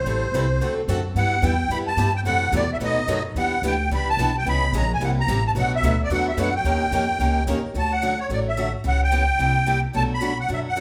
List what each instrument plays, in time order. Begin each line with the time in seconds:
Already playing: accordion C5
0.04 upright bass A1, steel-string acoustic guitar E3 G3 C4 E4 A4
0.32 upright bass C2, steel-string acoustic guitar E3 G3 C4 E4 A4
0.59 upright bass D2, steel-string acoustic guitar D3 A3 C4 F#4 A4
0.88 upright bass F#2, steel-string acoustic guitar D3 A3 C4 F#4 A4
1.15 upright bass G2, steel-string acoustic guitar G3 B3 E4 G4, accordion F#5
1.42 upright bass E2, steel-string acoustic guitar G3 B3 E4 G4, accordion G5
1.69 upright bass F#2, steel-string acoustic guitar G3 B3 E4 G4, accordion B5
1.87 accordion A5
1.96 upright bass G2, steel-string acoustic guitar G3 B3 E4 G4
2.16 accordion G5
2.24 upright bass F#2, steel-string acoustic guitar C3 E3 F#3 A3 C4 E4 F#4 A4, accordion F#5
2.52 upright bass E2, steel-string acoustic guitar C3 E3 F#3 A3 C4 E4 F#4 A4, accordion D5
2.73 accordion E5
2.80 upright bass D#2, steel-string acoustic guitar B2 D#3 F#3 A3 B3 D#4 F#4 A4
2.84 accordion D#5
3.07 upright bass F#2, steel-string acoustic guitar B2 D#3 F#3 A3 B3 D#4 F#4 A4
3.35 upright bass E2, steel-string acoustic guitar E3 G3 B3 D4 E4 G4 B4, accordion F#5
3.62 upright bass D2, steel-string acoustic guitar E3 G3 B3 D4 E4 G4 B4
3.67 accordion G5
3.90 upright bass C#2, steel-string acoustic guitar E3 G3 B3 D4 E4 G4 B4
3.95 accordion B5
4.10 accordion A5
4.17 upright bass B1, steel-string acoustic guitar E3 G3 B3 D4 E4 G4 B4
4.38 accordion G5
4.46 upright bass C#2, steel-string acoustic guitar C#3 E3 G#3 B3 C#4 E4 G#4, accordion B5
4.72 upright bass A#1, steel-string acoustic guitar C#3 E3 G#3 B3 C#4 E4 G#4
4.78 accordion A#5
4.94 accordion G#5
5.00 upright bass C2, steel-string acoustic guitar C3 G3 A#3 E4 G4
5.04 accordion F#5
5.20 accordion A#5
5.27 upright bass A1, steel-string acoustic guitar C3 G3 A#3 E4 G4
5.47 accordion A5
5.55 upright bass B1, steel-string acoustic guitar B2 F#3 A3 D4 F#4 B4, accordion F#5
5.76 accordion E5
5.82 upright bass D2, steel-string acoustic guitar B2 F#3 A3 D4 F#4 B4
6.04 accordion D5
6.09 upright bass E2, steel-string acoustic guitar B2 F#3 A3 D4 F#4 B4, accordion F#5
6.28 accordion E5
6.37 upright bass F#2, steel-string acoustic guitar B2 F#3 A3 D4 F#4 B4
6.41 accordion F#5
6.56 accordion G5
6.64 upright bass D#2, steel-string acoustic guitar D#3 A#3 C#4 G4 A#4
6.91 upright bass F2, steel-string acoustic guitar D#3 A#3 C#4 G4 A#4
7.19 upright bass C#2, steel-string acoustic guitar D#3 A#3 C#4 G4 A#4
7.47 upright bass D#2, steel-string acoustic guitar D#3 A#3 C#4 G4 A#4
7.62 muted upright bass stroke
7.74 upright bass D2, steel-string acoustic guitar D3 F#3 A3 C#4 F#4
7.79 accordion A5
7.92 accordion F#5
8.02 steel-string acoustic guitar D3 F#3 A3 C#4 F#4
8.20 accordion C#5
8.29 upright bass A1, steel-string acoustic guitar D3 F#3 A3 C#4 F#4, accordion D5
8.48 accordion E5
8.57 steel-string acoustic guitar D3 F#3 A3 C#4 F#4
8.84 upright bass C#2, steel-string acoustic guitar C#3 E3 B3 C#4 G4, accordion F#5
9.04 accordion G5
9.11 steel-string acoustic guitar C#3 E3 B3 C#4 G4
9.39 upright bass C2, steel-string acoustic guitar C3 G3 A#3 E4 G4
9.66 steel-string acoustic guitar C3 G3 A#3 E4 G4
9.93 upright bass B1, steel-string acoustic guitar B2 F#3 A3 D4 F#4, accordion A5
10.14 accordion B5
10.21 steel-string acoustic guitar B2 F#3 A3 D4 F#4
10.40 accordion F#5
10.48 upright bass F#2, steel-string acoustic guitar B2 F#3 A3 D4 F#4
10.53 accordion E5
10.68 accordion F#5
10.76 steel-string acoustic guitar B2 F#3 A3 D4 F#4